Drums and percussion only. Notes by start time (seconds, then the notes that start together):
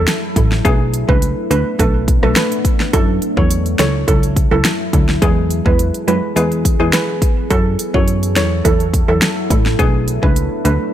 0.08 snare, closed hi-hat
0.36 kick, closed hi-hat
0.52 snare
0.65 kick, closed hi-hat
0.94 closed hi-hat
1.09 kick
1.22 closed hi-hat
1.51 closed hi-hat
1.79 kick, closed hi-hat
2.08 kick, closed hi-hat
2.23 cross-stick
2.36 snare, closed hi-hat
2.52 closed hi-hat
2.65 kick, closed hi-hat
2.80 snare
2.93 kick, closed hi-hat
3.22 closed hi-hat
3.37 kick
3.51 closed hi-hat
3.66 closed hi-hat
3.79 snare, closed hi-hat
4.08 kick, closed hi-hat
4.23 closed hi-hat
4.36 kick, closed hi-hat
4.65 snare, closed hi-hat
4.93 kick, closed hi-hat
5.09 snare
5.22 kick, closed hi-hat
5.51 closed hi-hat
5.66 kick
5.79 closed hi-hat
5.94 closed hi-hat
6.08 closed hi-hat
6.37 closed hi-hat
6.52 closed hi-hat
6.65 kick, closed hi-hat
6.93 snare, closed hi-hat
7.22 kick, closed hi-hat
7.51 kick, closed hi-hat
7.79 closed hi-hat
7.94 kick
8.08 closed hi-hat
8.23 closed hi-hat
8.36 snare, closed hi-hat
8.65 kick, closed hi-hat
8.80 closed hi-hat
8.94 kick, closed hi-hat
9.22 snare, closed hi-hat
9.50 kick, closed hi-hat
9.66 snare
9.79 kick, closed hi-hat
10.08 closed hi-hat
10.23 kick
10.36 closed hi-hat
10.65 closed hi-hat